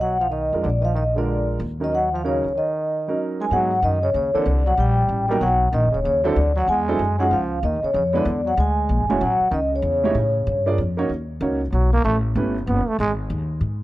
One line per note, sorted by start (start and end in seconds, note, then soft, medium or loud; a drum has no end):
0.00 0.49 B1 medium
0.00 0.19 F#3 medium
0.00 0.22 F#5 medium
0.20 0.29 F3 medium
0.20 0.32 F5 medium
0.30 0.61 D#3 medium
0.30 0.65 D#5 medium
0.53 0.64 F2 medium
0.53 0.64 G#3 medium
0.53 0.64 D4 medium
0.53 0.64 F4 medium
0.53 0.64 A#4 medium
0.62 1.56 A#1 medium
0.62 0.70 D3 medium
0.62 0.71 D5 medium
0.81 0.83 D#3 medium
0.81 0.93 F3 medium
0.81 0.86 D#5 medium
0.81 0.97 F5 medium
0.94 1.04 D#3 medium
0.94 1.06 D#5 medium
1.14 1.45 D3 medium
1.14 1.58 G#3 medium
1.14 1.58 D4 medium
1.14 1.58 F4 medium
1.14 1.58 A#4 medium
1.18 1.47 D5 medium
1.60 2.40 D#2 medium
1.80 1.91 D#3 medium
1.80 1.91 F#3 medium
1.80 1.91 C#4 medium
1.80 1.91 D#4 soft
1.80 1.91 A#4 medium
1.84 1.94 D#5 medium
1.93 2.11 F#3 medium
1.93 2.14 F#5 medium
2.12 2.23 F3 medium
2.12 2.25 F5 medium
2.24 2.54 C#3 medium
2.24 2.42 F#3 medium
2.24 2.42 C#4 medium
2.24 2.43 D#4 medium
2.24 2.43 A#4 medium
2.24 2.58 C#5 medium
2.44 2.55 C#2 medium
2.55 3.15 D#3 medium
2.55 3.16 D#5 medium
3.08 3.49 F#3 medium
3.08 3.49 C#4 medium
3.08 3.49 D#4 medium
3.08 3.50 A#4 medium
3.40 3.45 G#3 medium
3.40 3.46 G#5 medium
3.51 3.82 G#2 medium
3.51 3.69 F#3 medium
3.51 3.81 F#3 medium
3.51 3.70 G#3 medium
3.51 3.70 B3 medium
3.51 3.70 D#4 medium
3.51 3.70 G#4 medium
3.51 3.85 F#5 medium
3.82 4.13 F#2 medium
3.82 4.01 D#3 medium
3.82 4.04 D#5 medium
4.02 4.12 C#3 medium
4.02 4.15 C#5 medium
4.13 4.33 D#2 medium
4.13 4.33 C#3 medium
4.13 4.34 C#5 medium
4.34 4.64 D3 medium
4.34 4.45 E3 medium
4.34 4.45 A#3 medium
4.34 4.45 C4 medium
4.34 4.45 D4 medium
4.34 4.45 A4 medium
4.34 4.68 D5 medium
4.34 muted upright bass stroke soft
4.46 4.77 C2 medium
4.66 4.76 F#3 medium
4.66 4.79 F#5 medium
4.77 5.08 A#1 medium
4.77 5.26 G3 medium
4.77 5.27 G5 medium
5.09 5.40 A1 medium
5.28 5.40 F#3 medium
5.28 5.39 G3 medium
5.28 5.41 A#3 medium
5.28 5.41 B3 medium
5.28 5.41 D#4 medium
5.28 5.41 A#4 medium
5.28 5.42 G5 loud
5.40 5.72 B1 medium
5.40 5.70 F#3 medium
5.40 5.71 F#5 medium
5.71 5.85 A#1 medium
5.71 5.90 D#3 medium
5.71 5.95 D#5 medium
5.83 5.94 F#1 medium
5.91 6.04 D#1 medium
5.91 6.02 C#3 medium
5.91 6.04 C#5 medium
6.03 6.36 D#2 medium
6.03 6.23 C#3 medium
6.03 6.26 C#5 medium
6.23 6.54 D3 medium
6.23 6.35 F#3 medium
6.23 6.35 C4 medium
6.23 6.35 D4 medium
6.23 6.35 E4 medium
6.23 6.36 A4 medium
6.23 6.55 D5 medium
6.36 6.67 D2 medium
6.56 6.67 F#3 medium
6.56 6.69 F#5 medium
6.68 6.99 E2 medium
6.68 7.17 G#3 medium
6.68 7.22 G#5 medium
6.88 6.99 F#3 medium
6.88 6.99 C4 medium
6.88 6.99 D4 medium
6.88 6.99 E4 medium
6.88 6.99 A4 medium
6.99 7.30 F#2 medium
7.18 7.29 F#3 medium
7.18 7.30 G#3 medium
7.18 7.30 C#4 medium
7.18 7.30 D#4 medium
7.18 7.31 F4 medium
7.18 7.31 G#4 medium
7.18 7.32 F#5 medium
7.29 7.62 C#2 medium
7.29 7.60 F3 medium
7.29 7.62 F5 medium
7.62 7.82 D#2 medium
7.62 7.81 D#3 medium
7.62 7.82 D#5 medium
7.82 7.93 C#3 medium
7.82 7.95 C#5 medium
7.82 muted upright bass stroke soft
7.94 8.25 F2 medium
7.94 8.03 C#3 medium
7.94 8.05 C#5 medium
8.13 8.44 D3 medium
8.13 8.24 G#3 medium
8.13 8.25 B3 medium
8.13 8.25 D4 medium
8.13 8.25 E4 medium
8.13 8.25 B4 medium
8.13 8.48 D5 medium
8.25 8.56 E2 medium
8.45 8.56 F#3 medium
8.45 8.58 F#5 medium
8.57 8.88 D2 loud
8.57 9.05 G#3 medium
8.57 9.07 G#5 medium
8.89 9.00 A#1 medium
9.00 9.10 G#1 medium
9.08 9.20 E1 medium
9.08 9.19 G#3 medium
9.08 9.20 A3 medium
9.08 9.20 C#4 medium
9.08 9.20 E4 medium
9.08 9.20 F#4 medium
9.08 9.20 C#5 medium
9.08 9.22 G#5 medium
9.20 9.40 A1 medium
9.20 9.50 F#3 medium
9.20 9.51 F#5 loud
9.40 muted upright bass stroke soft
9.51 9.82 C#2 medium
9.51 9.60 D#3 medium
9.51 9.63 D#5 medium
9.72 10.74 C#3 medium
9.72 10.76 C#5 medium
9.82 10.14 E2 medium
10.04 10.14 A3 medium
10.04 10.14 D#4 medium
10.04 10.15 E4 medium
10.04 10.15 G4 medium
10.04 10.15 C#5 medium
10.15 10.46 A2 medium
10.47 10.77 G2 loud
10.66 10.77 A#3 medium
10.66 10.77 D4 medium
10.66 10.77 F4 medium
10.66 10.77 G#4 medium
10.66 10.77 D5 medium
10.78 11.09 F2 medium
10.97 11.08 A#3 medium
10.97 11.08 C#4 medium
10.97 11.09 D#4 medium
10.97 11.09 F#4 medium
10.97 11.09 C#5 medium
11.09 11.40 D#2 medium
11.41 11.72 C#2 loud
11.41 11.59 A#3 medium
11.41 11.60 C#4 medium
11.41 11.59 D#4 medium
11.41 11.60 F#4 medium
11.41 11.60 C#5 medium
11.72 12.03 B1 medium
11.72 11.91 F#3 medium
11.93 12.04 A#3 medium
12.04 12.35 A1 medium
12.04 12.17 A3 medium
12.35 12.66 G1 medium
12.35 12.54 A3 medium
12.35 12.54 C#4 medium
12.35 12.54 E4 medium
12.35 12.54 G4 medium
12.35 12.55 B4 medium
12.67 12.86 F#1 medium
12.67 12.90 B3 medium
12.88 12.99 A3 medium
12.88 muted upright bass stroke soft
12.99 13.29 G#1 medium
12.99 13.12 G#3 medium
13.30 13.60 D#2 medium
13.61 13.83 G#2 medium